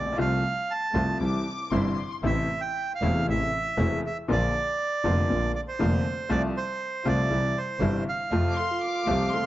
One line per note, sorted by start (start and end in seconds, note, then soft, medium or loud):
0.00 0.07 A1 soft
0.00 0.16 A#1 medium
0.00 0.17 D5 medium
0.06 0.13 A#1 medium
0.12 0.19 B1 medium
0.17 0.40 C2 medium
0.17 0.40 C3 medium
0.17 0.40 F3 medium
0.17 0.39 A3 medium
0.17 0.40 A3 medium
0.17 0.40 C4 medium
0.17 0.40 F4 medium
0.17 0.72 F5 medium
0.71 1.18 A5 medium
0.94 1.17 C2 medium
0.94 1.17 C3 medium
0.94 1.17 F3 medium
0.94 1.16 A3 medium
0.94 1.17 A3 medium
0.94 1.16 C4 medium
0.94 1.16 F4 medium
0.94 1.17 F4 medium
1.19 1.42 C2 medium
1.19 1.43 C2 soft
1.19 1.43 C3 soft
1.19 1.43 E3 soft
1.19 1.42 G3 soft
1.19 1.43 G3 soft
1.19 1.42 C4 soft
1.19 1.42 E4 soft
1.19 1.43 E4 soft
1.19 1.69 D6 medium
1.72 1.95 G1 medium
1.72 1.95 G2 medium
1.72 1.94 C3 medium
1.72 1.95 E3 medium
1.72 1.95 G3 medium
1.72 1.95 C4 medium
1.72 1.95 E4 medium
1.72 2.12 C6 medium
2.23 2.46 A1 medium
2.23 2.46 A2 medium
2.23 2.46 C3 medium
2.23 2.46 E3 medium
2.23 2.46 A3 medium
2.23 2.46 C4 medium
2.23 2.46 E4 medium
2.23 2.61 E5 medium
2.61 2.93 G5 medium
2.95 3.26 F5 medium
3.01 3.23 E1 medium
3.01 3.24 E1 medium
3.01 3.24 E2 medium
3.01 3.24 C3 medium
3.01 3.24 E3 medium
3.01 3.23 A3 medium
3.01 3.24 A3 medium
3.01 3.23 C4 medium
3.01 3.24 E4 medium
3.27 3.49 A1 soft
3.27 3.49 A2 soft
3.27 3.49 C3 soft
3.27 3.49 E3 soft
3.27 3.49 A3 soft
3.27 3.49 C4 soft
3.27 3.49 E4 soft
3.27 4.01 E5 medium
3.77 3.99 E1 medium
3.77 4.00 E1 medium
3.77 4.00 E2 medium
3.77 3.99 C3 medium
3.77 3.99 E3 medium
3.77 4.00 A3 medium
3.77 4.00 C4 medium
3.77 4.00 E4 medium
4.07 4.17 E5 medium
4.28 4.50 A#1 medium
4.28 4.51 A#1 medium
4.28 4.50 A#2 medium
4.28 4.50 D3 medium
4.28 4.50 F3 medium
4.28 4.50 A#3 medium
4.28 4.51 A#3 medium
4.28 4.51 D4 medium
4.28 4.50 F4 medium
4.28 4.51 F4 medium
4.28 5.52 D5 medium
5.04 5.26 F1 medium
5.04 5.26 F2 medium
5.04 5.25 D3 medium
5.04 5.26 F3 medium
5.04 5.26 A#3 medium
5.04 5.26 D4 medium
5.04 5.26 F4 medium
5.29 5.51 A#1 medium
5.29 5.51 A#2 soft
5.29 5.51 D3 soft
5.29 5.51 F3 soft
5.29 5.51 A#3 soft
5.29 5.51 D4 soft
5.29 5.51 F4 soft
5.55 5.61 D5 medium
5.68 6.32 C5 medium
5.79 6.01 F1 medium
5.79 6.01 F2 medium
5.79 6.01 D3 medium
5.79 6.01 F3 medium
5.79 6.01 A#3 medium
5.79 6.01 D4 medium
5.79 6.01 F4 medium
6.29 6.51 C2 medium
6.29 6.51 C3 medium
6.29 6.51 F3 medium
6.29 6.50 A3 medium
6.29 6.51 A3 medium
6.29 6.51 C4 medium
6.29 6.51 F4 medium
6.29 6.42 D5 medium
6.57 7.08 C5 medium
7.04 7.27 C2 medium
7.04 7.27 C3 medium
7.04 7.27 F3 medium
7.04 7.26 A3 medium
7.04 7.27 A3 medium
7.04 7.26 C4 medium
7.04 7.26 F4 medium
7.04 7.27 F4 medium
7.08 7.59 D5 medium
7.29 7.51 C2 medium
7.29 7.52 C2 medium
7.29 7.52 C3 medium
7.29 7.52 E3 soft
7.29 7.51 G3 soft
7.29 7.52 G3 soft
7.29 7.51 C4 soft
7.29 7.51 E4 soft
7.29 7.52 E4 soft
7.58 8.04 C5 medium
7.79 8.02 G1 medium
7.79 8.02 G2 medium
7.79 8.02 C3 medium
7.79 8.02 E3 medium
7.79 8.01 G3 medium
7.79 8.02 G3 medium
7.79 8.02 C4 medium
7.79 8.02 E4 medium
8.09 9.46 F5 medium
8.30 8.53 F2 medium
8.30 8.54 F2 medium
8.30 8.53 C3 medium
8.30 8.54 F3 medium
8.30 8.52 A3 medium
8.30 8.54 A3 medium
8.30 8.53 C4 medium
8.30 8.53 F4 medium
8.30 8.54 F4 medium
8.50 8.57 D6 medium
8.57 8.73 A4 medium
8.57 8.82 C6 medium
8.71 9.07 F4 medium
8.83 9.31 D6 medium
9.06 9.29 C2 medium
9.06 9.29 C3 medium
9.06 9.30 F3 medium
9.06 9.29 A3 medium
9.06 9.30 A3 medium
9.06 9.29 C4 medium
9.06 9.29 F4 medium
9.06 9.36 G4 medium
9.33 9.46 F2 soft
9.33 9.46 C3 soft
9.33 9.46 F3 soft
9.33 9.46 A3 soft
9.33 9.46 C4 soft
9.33 9.46 F4 soft
9.33 9.46 A4 medium
9.33 9.46 C6 medium